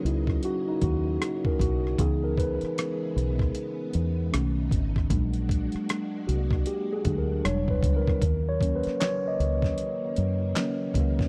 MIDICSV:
0, 0, Header, 1, 6, 480
1, 0, Start_track
1, 0, Tempo, 779221
1, 1223, Time_signature, 4, 2, 24, 8
1, 6952, End_track
2, 0, Start_track
2, 0, Title_t, "Tine electric piano"
2, 0, Program_c, 0, 4
2, 0, Control_c, 0, 64, 127
2, 0, Note_on_c, 0, 54, 51
2, 0, Note_on_c, 0, 58, 46
2, 0, Note_on_c, 0, 61, 86
2, 0, Note_on_c, 0, 63, 85
2, 0, Note_on_c, 0, 66, 91
2, 31, Note_on_c, 0, 64, 70
2, 274, Note_off_c, 0, 64, 0
2, 276, Note_off_c, 0, 66, 0
2, 276, Note_on_c, 0, 66, 89
2, 421, Note_off_c, 0, 63, 0
2, 421, Note_on_c, 0, 63, 85
2, 423, Note_off_c, 0, 66, 0
2, 510, Note_off_c, 0, 63, 0
2, 515, Note_on_c, 0, 66, 80
2, 901, Note_on_c, 0, 70, 82
2, 909, Note_off_c, 0, 66, 0
2, 990, Note_off_c, 0, 70, 0
2, 992, Note_on_c, 0, 66, 85
2, 1226, Note_on_c, 0, 52, 56
2, 1230, Control_c, 0, 64, 0
2, 1230, Note_on_c, 0, 59, 48
2, 1233, Note_off_c, 0, 58, 0
2, 1233, Note_on_c, 0, 68, 92
2, 1234, Note_off_c, 0, 61, 0
2, 1234, Note_off_c, 0, 66, 0
2, 1234, Note_on_c, 0, 63, 61
2, 1236, Note_off_c, 0, 54, 0
2, 1349, Control_c, 0, 64, 127
2, 1367, Note_off_c, 0, 68, 0
2, 1379, Note_on_c, 0, 70, 80
2, 1418, Note_off_c, 0, 70, 0
2, 1467, Note_on_c, 0, 71, 79
2, 1566, Note_off_c, 0, 52, 0
2, 1568, Note_off_c, 0, 59, 0
2, 1570, Note_off_c, 0, 63, 0
2, 2640, Note_off_c, 0, 71, 0
2, 2663, Note_on_c, 0, 51, 57
2, 2666, Note_on_c, 0, 57, 49
2, 2668, Note_on_c, 0, 61, 64
2, 2672, Control_c, 0, 64, 0
2, 2761, Control_c, 0, 64, 127
2, 3119, Note_off_c, 0, 51, 0
2, 3121, Note_off_c, 0, 57, 0
2, 3122, Note_off_c, 0, 61, 0
2, 3146, Note_on_c, 0, 54, 51
2, 3151, Note_on_c, 0, 56, 49
2, 3152, Control_c, 0, 64, 0
2, 3153, Note_on_c, 0, 62, 58
2, 3260, Control_c, 0, 64, 127
2, 3486, Note_off_c, 0, 54, 0
2, 3488, Note_off_c, 0, 56, 0
2, 3489, Note_off_c, 0, 62, 0
2, 3864, Note_on_c, 0, 66, 63
2, 4109, Note_on_c, 0, 67, 81
2, 4111, Note_off_c, 0, 66, 0
2, 4180, Note_off_c, 0, 67, 0
2, 4267, Note_on_c, 0, 68, 81
2, 4342, Note_on_c, 0, 54, 45
2, 4347, Note_on_c, 0, 56, 39
2, 4348, Note_on_c, 0, 62, 46
2, 4424, Note_on_c, 0, 70, 71
2, 4429, Note_off_c, 0, 68, 0
2, 4559, Note_off_c, 0, 54, 0
2, 4561, Note_off_c, 0, 56, 0
2, 4562, Note_off_c, 0, 62, 0
2, 4572, Note_off_c, 0, 70, 0
2, 4585, Note_on_c, 0, 54, 53
2, 4587, Note_on_c, 0, 55, 49
2, 4588, Note_on_c, 0, 73, 85
2, 4590, Control_c, 0, 64, 0
2, 4594, Note_on_c, 0, 62, 58
2, 4716, Control_c, 0, 64, 127
2, 4746, Note_on_c, 0, 71, 80
2, 4750, Note_off_c, 0, 73, 0
2, 4894, Note_off_c, 0, 71, 0
2, 4906, Note_on_c, 0, 70, 88
2, 5040, Note_off_c, 0, 54, 0
2, 5041, Note_off_c, 0, 55, 0
2, 5044, Note_off_c, 0, 62, 0
2, 5070, Control_c, 0, 64, 0
2, 5176, Control_c, 0, 64, 127
2, 5202, Note_off_c, 0, 70, 0
2, 5227, Note_on_c, 0, 73, 92
2, 5301, Note_on_c, 0, 54, 52
2, 5305, Note_on_c, 0, 58, 47
2, 5309, Note_on_c, 0, 61, 59
2, 5390, Note_off_c, 0, 73, 0
2, 5394, Note_on_c, 0, 71, 83
2, 5545, Note_on_c, 0, 73, 101
2, 5553, Note_off_c, 0, 71, 0
2, 5643, Note_off_c, 0, 54, 0
2, 5645, Note_off_c, 0, 58, 0
2, 5647, Note_off_c, 0, 61, 0
2, 5709, Note_off_c, 0, 73, 0
2, 5715, Note_on_c, 0, 75, 80
2, 5820, Note_off_c, 0, 75, 0
2, 6510, Note_on_c, 0, 54, 46
2, 6511, Note_on_c, 0, 58, 44
2, 6514, Note_on_c, 0, 61, 53
2, 6723, Note_off_c, 0, 54, 0
2, 6724, Note_off_c, 0, 58, 0
2, 6725, Note_off_c, 0, 61, 0
2, 6952, End_track
3, 0, Start_track
3, 0, Title_t, "String machine"
3, 0, Program_c, 1, 50
3, 0, Note_on_c, 1, 49, 71
3, 0, Note_on_c, 1, 54, 67
3, 0, Note_on_c, 1, 58, 68
3, 0, Note_on_c, 1, 75, 77
3, 1199, Note_off_c, 1, 54, 0
3, 1200, Note_off_c, 1, 75, 0
3, 1201, Note_off_c, 1, 58, 0
3, 1226, Note_on_c, 1, 52, 82
3, 1229, Note_on_c, 1, 56, 71
3, 1230, Note_on_c, 1, 59, 68
3, 2650, Note_off_c, 1, 52, 0
3, 2652, Note_off_c, 1, 56, 0
3, 2668, Note_on_c, 1, 57, 58
3, 2670, Note_on_c, 1, 63, 76
3, 3119, Note_off_c, 1, 49, 0
3, 3127, Note_off_c, 1, 59, 0
3, 3141, Note_off_c, 1, 57, 0
3, 3141, Note_off_c, 1, 63, 0
3, 3147, Note_on_c, 1, 56, 64
3, 3147, Note_on_c, 1, 58, 66
3, 3147, Note_on_c, 1, 62, 79
3, 3149, Note_on_c, 1, 66, 81
3, 4570, Note_off_c, 1, 58, 0
3, 4571, Note_off_c, 1, 56, 0
3, 4572, Note_off_c, 1, 66, 0
3, 4586, Note_on_c, 1, 59, 60
3, 4587, Note_on_c, 1, 64, 72
3, 4588, Note_on_c, 1, 52, 61
3, 5046, Note_off_c, 1, 62, 0
3, 5060, Note_off_c, 1, 59, 0
3, 5060, Note_off_c, 1, 64, 0
3, 5061, Note_off_c, 1, 52, 0
3, 5062, Note_on_c, 1, 54, 70
3, 5063, Note_on_c, 1, 49, 78
3, 5064, Note_on_c, 1, 58, 65
3, 5066, Note_on_c, 1, 51, 83
3, 6952, Note_off_c, 1, 49, 0
3, 6952, Note_off_c, 1, 51, 0
3, 6952, Note_off_c, 1, 54, 0
3, 6952, Note_off_c, 1, 58, 0
3, 6952, End_track
4, 0, Start_track
4, 0, Title_t, "Fingered electric bass"
4, 0, Program_c, 2, 33
4, 29, Note_on_c, 2, 37, 74
4, 244, Note_off_c, 2, 37, 0
4, 509, Note_on_c, 2, 39, 81
4, 724, Note_off_c, 2, 39, 0
4, 987, Note_on_c, 2, 35, 76
4, 1203, Note_off_c, 2, 35, 0
4, 1228, Note_on_c, 2, 37, 101
4, 1590, Note_off_c, 2, 37, 0
4, 1948, Note_on_c, 2, 35, 82
4, 2164, Note_off_c, 2, 35, 0
4, 2432, Note_on_c, 2, 40, 82
4, 2646, Note_off_c, 2, 40, 0
4, 2674, Note_on_c, 2, 35, 98
4, 2887, Note_off_c, 2, 35, 0
4, 2908, Note_on_c, 2, 32, 73
4, 3124, Note_off_c, 2, 32, 0
4, 3146, Note_on_c, 2, 34, 102
4, 3509, Note_off_c, 2, 34, 0
4, 3872, Note_on_c, 2, 36, 86
4, 4086, Note_off_c, 2, 36, 0
4, 4348, Note_on_c, 2, 38, 76
4, 4563, Note_off_c, 2, 38, 0
4, 4591, Note_on_c, 2, 28, 102
4, 4805, Note_off_c, 2, 28, 0
4, 4827, Note_on_c, 2, 37, 77
4, 5043, Note_off_c, 2, 37, 0
4, 5065, Note_on_c, 2, 39, 96
4, 5428, Note_off_c, 2, 39, 0
4, 5790, Note_on_c, 2, 37, 78
4, 6004, Note_off_c, 2, 37, 0
4, 6269, Note_on_c, 2, 42, 83
4, 6484, Note_off_c, 2, 42, 0
4, 6745, Note_on_c, 2, 37, 78
4, 6952, Note_off_c, 2, 37, 0
4, 6952, End_track
5, 0, Start_track
5, 0, Title_t, "Muted fingered electric bass strokes"
5, 1620, Note_on_c, 9, 29, 43
5, 1682, Note_off_c, 9, 29, 0
5, 3540, Note_on_c, 9, 29, 44
5, 3602, Note_off_c, 9, 29, 0
5, 5461, Note_on_c, 9, 29, 43
5, 5522, Note_off_c, 9, 29, 0
5, 6952, End_track
6, 0, Start_track
6, 0, Title_t, "Drums"
6, 36, Note_on_c, 9, 42, 62
6, 98, Note_off_c, 9, 42, 0
6, 168, Note_on_c, 9, 36, 87
6, 183, Note_on_c, 9, 37, 33
6, 230, Note_off_c, 9, 36, 0
6, 244, Note_off_c, 9, 37, 0
6, 263, Note_on_c, 9, 42, 66
6, 325, Note_off_c, 9, 42, 0
6, 502, Note_on_c, 9, 42, 60
6, 504, Note_on_c, 9, 36, 96
6, 564, Note_off_c, 9, 42, 0
6, 566, Note_off_c, 9, 36, 0
6, 749, Note_on_c, 9, 37, 101
6, 752, Note_on_c, 9, 42, 71
6, 811, Note_off_c, 9, 37, 0
6, 814, Note_off_c, 9, 42, 0
6, 892, Note_on_c, 9, 36, 92
6, 953, Note_off_c, 9, 36, 0
6, 983, Note_on_c, 9, 36, 87
6, 993, Note_on_c, 9, 42, 65
6, 1044, Note_off_c, 9, 36, 0
6, 1055, Note_off_c, 9, 42, 0
6, 1151, Note_on_c, 9, 37, 37
6, 1213, Note_off_c, 9, 37, 0
6, 1223, Note_on_c, 9, 36, 105
6, 1225, Note_on_c, 9, 42, 83
6, 1284, Note_off_c, 9, 36, 0
6, 1287, Note_off_c, 9, 42, 0
6, 1463, Note_on_c, 9, 36, 79
6, 1476, Note_on_c, 9, 42, 57
6, 1525, Note_off_c, 9, 36, 0
6, 1538, Note_off_c, 9, 42, 0
6, 1608, Note_on_c, 9, 42, 46
6, 1631, Note_on_c, 9, 37, 33
6, 1670, Note_off_c, 9, 42, 0
6, 1692, Note_off_c, 9, 37, 0
6, 1712, Note_on_c, 9, 42, 78
6, 1717, Note_on_c, 9, 37, 106
6, 1774, Note_off_c, 9, 42, 0
6, 1779, Note_off_c, 9, 37, 0
6, 1957, Note_on_c, 9, 42, 61
6, 2019, Note_off_c, 9, 42, 0
6, 2090, Note_on_c, 9, 36, 84
6, 2104, Note_on_c, 9, 37, 33
6, 2152, Note_off_c, 9, 36, 0
6, 2166, Note_off_c, 9, 37, 0
6, 2185, Note_on_c, 9, 42, 71
6, 2246, Note_off_c, 9, 42, 0
6, 2423, Note_on_c, 9, 42, 62
6, 2485, Note_off_c, 9, 42, 0
6, 2671, Note_on_c, 9, 37, 107
6, 2674, Note_on_c, 9, 42, 75
6, 2733, Note_off_c, 9, 37, 0
6, 2736, Note_off_c, 9, 42, 0
6, 2902, Note_on_c, 9, 36, 93
6, 2910, Note_on_c, 9, 42, 64
6, 2964, Note_off_c, 9, 36, 0
6, 2971, Note_off_c, 9, 42, 0
6, 3055, Note_on_c, 9, 36, 82
6, 3067, Note_on_c, 9, 37, 36
6, 3117, Note_off_c, 9, 36, 0
6, 3129, Note_off_c, 9, 37, 0
6, 3142, Note_on_c, 9, 36, 111
6, 3144, Note_on_c, 9, 42, 83
6, 3204, Note_off_c, 9, 36, 0
6, 3205, Note_off_c, 9, 42, 0
6, 3286, Note_on_c, 9, 42, 48
6, 3348, Note_off_c, 9, 42, 0
6, 3383, Note_on_c, 9, 36, 81
6, 3395, Note_on_c, 9, 42, 62
6, 3444, Note_off_c, 9, 36, 0
6, 3457, Note_off_c, 9, 42, 0
6, 3524, Note_on_c, 9, 42, 47
6, 3547, Note_on_c, 9, 37, 32
6, 3586, Note_off_c, 9, 42, 0
6, 3608, Note_off_c, 9, 37, 0
6, 3630, Note_on_c, 9, 42, 84
6, 3635, Note_on_c, 9, 37, 106
6, 3691, Note_off_c, 9, 42, 0
6, 3696, Note_off_c, 9, 37, 0
6, 3874, Note_on_c, 9, 42, 69
6, 3935, Note_off_c, 9, 42, 0
6, 4008, Note_on_c, 9, 36, 85
6, 4022, Note_on_c, 9, 37, 35
6, 4069, Note_off_c, 9, 36, 0
6, 4083, Note_off_c, 9, 37, 0
6, 4101, Note_on_c, 9, 42, 75
6, 4163, Note_off_c, 9, 42, 0
6, 4341, Note_on_c, 9, 42, 57
6, 4343, Note_on_c, 9, 36, 88
6, 4403, Note_off_c, 9, 42, 0
6, 4405, Note_off_c, 9, 36, 0
6, 4590, Note_on_c, 9, 37, 107
6, 4593, Note_on_c, 9, 42, 74
6, 4651, Note_off_c, 9, 37, 0
6, 4654, Note_off_c, 9, 42, 0
6, 4730, Note_on_c, 9, 36, 94
6, 4792, Note_off_c, 9, 36, 0
6, 4821, Note_on_c, 9, 36, 87
6, 4828, Note_on_c, 9, 42, 67
6, 4883, Note_off_c, 9, 36, 0
6, 4889, Note_off_c, 9, 42, 0
6, 4974, Note_on_c, 9, 36, 82
6, 4986, Note_on_c, 9, 37, 35
6, 5035, Note_off_c, 9, 36, 0
6, 5048, Note_off_c, 9, 37, 0
6, 5061, Note_on_c, 9, 36, 105
6, 5063, Note_on_c, 9, 42, 77
6, 5122, Note_off_c, 9, 36, 0
6, 5125, Note_off_c, 9, 42, 0
6, 5301, Note_on_c, 9, 36, 80
6, 5313, Note_on_c, 9, 42, 63
6, 5363, Note_off_c, 9, 36, 0
6, 5375, Note_off_c, 9, 42, 0
6, 5442, Note_on_c, 9, 42, 43
6, 5464, Note_on_c, 9, 38, 33
6, 5503, Note_off_c, 9, 42, 0
6, 5526, Note_off_c, 9, 38, 0
6, 5548, Note_on_c, 9, 42, 78
6, 5552, Note_on_c, 9, 39, 86
6, 5553, Note_on_c, 9, 38, 103
6, 5610, Note_off_c, 9, 42, 0
6, 5614, Note_off_c, 9, 39, 0
6, 5615, Note_off_c, 9, 38, 0
6, 5793, Note_on_c, 9, 42, 62
6, 5855, Note_off_c, 9, 42, 0
6, 5928, Note_on_c, 9, 36, 89
6, 5941, Note_on_c, 9, 38, 31
6, 5990, Note_off_c, 9, 36, 0
6, 6002, Note_off_c, 9, 38, 0
6, 6023, Note_on_c, 9, 42, 69
6, 6084, Note_off_c, 9, 42, 0
6, 6261, Note_on_c, 9, 42, 62
6, 6322, Note_off_c, 9, 42, 0
6, 6506, Note_on_c, 9, 39, 81
6, 6507, Note_on_c, 9, 38, 97
6, 6510, Note_on_c, 9, 42, 71
6, 6568, Note_off_c, 9, 39, 0
6, 6569, Note_off_c, 9, 38, 0
6, 6572, Note_off_c, 9, 42, 0
6, 6741, Note_on_c, 9, 36, 88
6, 6746, Note_on_c, 9, 42, 62
6, 6802, Note_off_c, 9, 36, 0
6, 6808, Note_off_c, 9, 42, 0
6, 6893, Note_on_c, 9, 36, 88
6, 6904, Note_on_c, 9, 38, 34
6, 6952, Note_off_c, 9, 36, 0
6, 6952, Note_off_c, 9, 38, 0
6, 6952, End_track
0, 0, End_of_file